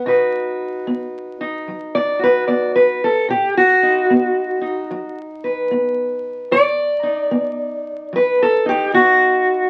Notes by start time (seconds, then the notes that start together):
0.06 B2 D#4 F#4 B4
0.87 B3
1.41 D#4
1.68 F#3
1.95 D5
2.19 F#4
2.23 B4
2.48 B3 D5
2.76 B4
3.04 A4
3.29 B2 G4
3.57 F#4
3.83 D#4
4.10 B3
4.61 D#4
4.91 F#3
5.44 B4
5.71 B3
6.51 B2 D5
7.03 D#4
7.31 B3
8.13 F#3 B4
8.42 A4
8.66 D#4 G4
8.94 B3 F#4